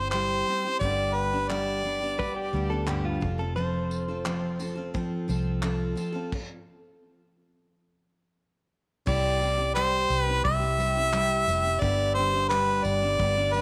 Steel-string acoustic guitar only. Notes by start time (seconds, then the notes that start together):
Already playing: C4 E4 G4
0.13 C3 G3 C4 E4 G4
0.47 G3 C4 E4 G4
0.65 C4 E4 G4
0.82 G2 D3 G3 B3 D4 G4
1.33 G3 B3 D4 G4
1.49 G2 D3 G3 B3 D4 G4
1.83 G3 B3 D4 G4
2.00 G3 B3 D4 G4
2.18 G3 B3 D4 G4
2.53 G3 B3 D4 G4
2.70 G3 B3 D4 G4
2.87 G2 D3 G3 B3 D4 G4
3.20 F3 C4 F4 A4
3.38 C4 F4 A4
3.56 F3 C4 F4 A4
4.08 C4 F4 A4
4.25 F3 C4 F4 A4
4.59 F3 C4 F4 A4
4.75 C4 F4 A4
4.94 F3 C4 F4 A4
5.28 F3 C4 F4 A4
5.63 F3 C4 F4 A4
5.95 F3 C4 F4 A4
6.12 C4 F4 A4
9.06 C3 G3 C4 E4 G4
9.40 G3 C4 E4 G4
9.58 C4 E4 G4
9.75 C3 G3 C4 E4 G4
10.27 C4 E4 G4
10.44 G3 C4 E4 G4
10.60 C4 E4 G4
10.78 G3 C4 E4 G4
10.95 C4 E4 G4
11.13 C3 G3 C4 E4 G4
11.47 G3 C4 E4 G4
11.63 C4 E4 G4
11.81 G2 D3 G3 B3 D4 G4
12.16 G3 B3 D4 G4
12.33 G3 B3 D4 G4
12.50 G2 D3 G3 B3 D4 G4
13.02 G3 B3 D4 G4
13.18 G3 B3 D4 G4
13.36 G3 B3 D4 G4
13.54 G3 B3 D4 G4